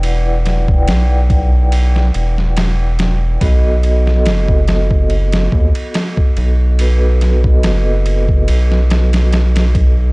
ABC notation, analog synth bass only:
X:1
M:4/4
L:1/8
Q:"Swing 16ths" 1/4=71
K:Bphr
V:1 name="Analog synth bass" clef=bass
E,,,2 B,,,3 E,,,3 | B,,,2 F,,,3 ^D,, z B,,,- | B,,,2 F,,,2 B,,,4 |]